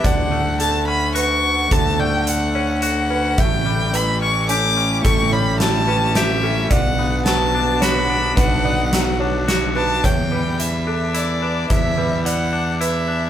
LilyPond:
<<
  \new Staff \with { instrumentName = "Violin" } { \time 3/4 \key e \dorian \tempo 4 = 108 fis''4 a''8 b''8 cis'''4 | a''8 g''8 fis''4 fis''4 | g''4 b''8 cis'''8 d'''4 | cis'''8 b''8 a''4 e''4 |
fis''4 a''4 b''4 | fis''2 r8 a''8 | g''4 e''4 d''4 | e''4 fis''4 e''4 | }
  \new Staff \with { instrumentName = "Felt piano" } { \time 3/4 \key e \dorian d''4 a'4 b'4 | a'8 d''4 cis''4 b'8 | e''4 b'4 cis'4 | a'8 cis''4 b'4 a'8 |
d''4 b'4 cis''4 | b'8 d''4 cis''4 b'8 | cis''8 b'4 a'4 b'8~ | b'8 b'8 d''4 b'4 | }
  \new Staff \with { instrumentName = "Analog synth pad" } { \time 3/4 \key e \dorian << { <d fis''>2.~ | <d fis''>2. | <a e' g''>2.~ | <a e' g''>2. |
<b b' fis''>2.~ | <b b' fis''>2. | r2. | r2. | } \\ { a'2.~ | a'2.~ | a'2.~ | a'2. |
d'2.~ | d'2. | r2. | r2. | } >> }
  \new Staff \with { instrumentName = "Clean electric guitar" } { \time 3/4 \key e \dorian d8 a8 d8 cis'8 fis'4 | d8 a8 d8 cis'8 fis'8 cis'8 | a,8 g8 e8 cis'8 g'8 cis'8 | a,8 g8 e8 cis'8 g'8 cis'8 |
b,8 b8 fis8 d'8 fis'8 d'8 | b,8 b8 fis8 d'8 fis'8 d'8 | e,8 g8 e8 d'8 e'8 d'8 | e,8 g8 e8 d'8 e'8 d'8 | }
  \new Staff \with { instrumentName = "Fingered electric bass" } { \clef bass \time 3/4 \key e \dorian d,2. | d,2. | a,,2. | a,,2. |
b,,2. | b,,2. | e,2. | e,2. | }
  \new DrumStaff \with { instrumentName = "Drums" } \drummode { \time 3/4 <hh bd>4 hh4 hh4 | <hh bd>4 hh4 hh4 | <hh bd>4 hh4 hh4 | <hh bd>4 <hh sn>4 <hh sn>4 |
<hh bd>4 <hh sn>4 <hh sn>4 | <hh bd>4 <hh sn>4 <hh sn>4 | <hh bd>4 hh4 hh4 | <hh bd>4 hh4 hh4 | }
>>